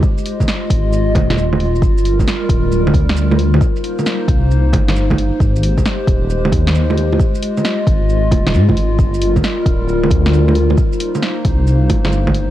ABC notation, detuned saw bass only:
X:1
M:4/4
L:1/8
Q:"Swing 16ths" 1/4=134
K:Gphr
V:1 name="Detuned saw bass" clef=bass
z3 A,,,2 E,,, E,,,2 | G,,,2 z D,,,2 D,,3 | z3 C,,2 G,,,2 z | A,,,2 z E,,,2 E,,3 |
z3 A,,,2 E,,, A,, A,,, | G,,,2 z D,,,2 D,,3 | z3 C,,2 G,,,2 z |]